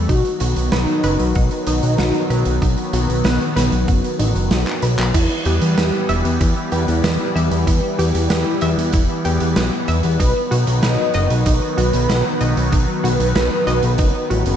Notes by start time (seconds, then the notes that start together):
0.09 B1 D#3 F#3 B3 D#4 F#4, kick, closed hi-hat
0.25 closed hi-hat
0.40 B1 F#4, closed hi-hat
0.56 B1, closed hi-hat
0.72 B1 D#4 B4, snare, closed hi-hat
0.88 closed hi-hat
1.04 F#1 B4, closed hi-hat
1.20 B1, closed hi-hat
1.35 B1 F#5, kick, closed hi-hat
1.51 closed hi-hat
1.67 B1 D#4, closed hi-hat
1.83 B1, closed hi-hat
1.98 B1 F#4, snare, closed hi-hat
2.14 closed hi-hat
2.30 B1 B4, closed hi-hat
2.45 B1, closed hi-hat
2.62 B1 B3 D#4, kick, closed hi-hat
2.77 closed hi-hat
2.93 B1 F#4, closed hi-hat
3.09 B1, closed hi-hat
3.24 B1 B4, snare, closed hi-hat
3.41 closed hi-hat
3.56 B1 B4, snare, closed hi-hat
3.72 B1, closed hi-hat
3.88 F#1 F#5, kick, closed hi-hat
4.04 closed hi-hat
4.19 A1 D#4, closed hi-hat
4.35 F#1, closed hi-hat
4.51 B1 F#4, snare, closed hi-hat
4.67 clap, closed hi-hat
4.82 B1 B4, closed hi-hat
4.99 B1, clap, closed hi-hat
5.14 E2 E3 G3 B3 E4, kick, closed hi-hat, crash
5.45 E2 G4, closed hi-hat
5.61 E2, closed hi-hat
5.77 E2 G4 B4, snare, closed hi-hat
6.09 E1 E5, closed hi-hat
6.25 E2, closed hi-hat
6.41 E2 E4, kick, closed hi-hat
6.72 E2 E4 G4, closed hi-hat
6.88 E2, closed hi-hat
7.04 E2 B4, snare, closed hi-hat
7.36 E2 E5, closed hi-hat
7.51 E2, closed hi-hat
7.67 E2 E4, kick, closed hi-hat
7.99 E2 G4, closed hi-hat
8.15 E2, closed hi-hat
8.30 E2 B4, snare, closed hi-hat
8.61 E2 E5, closed hi-hat
8.78 E2, closed hi-hat
8.93 E1 E4, kick, closed hi-hat
9.25 E2 G4, closed hi-hat
9.40 E2, closed hi-hat
9.56 B1 B4, snare, closed hi-hat
9.88 E2 E5, closed hi-hat
10.03 E2, closed hi-hat
10.20 B1 D#3 F#3 D#4 B4, kick, closed hi-hat
10.51 B1 F#4, closed hi-hat
10.67 B1, closed hi-hat
10.83 B1 B4 D#5, snare, closed hi-hat
11.14 F#1 D#5, closed hi-hat
11.30 B1, closed hi-hat
11.46 B1 D#4, kick, closed hi-hat
11.77 B1 F#4 B4, closed hi-hat
11.93 B1, closed hi-hat
12.09 B1 B4, snare, closed hi-hat
12.41 B1 D#5, closed hi-hat
12.57 B1, closed hi-hat
12.72 B1 D#4 B4, kick, closed hi-hat
13.04 B1 F#4, closed hi-hat
13.20 B1, closed hi-hat
13.35 B1 B4, snare, closed hi-hat
13.67 B1 D#5, closed hi-hat
13.83 B1, closed hi-hat
13.98 F#1 D#4, kick, closed hi-hat
14.30 A1 F#4, closed hi-hat
14.46 F#1, closed hi-hat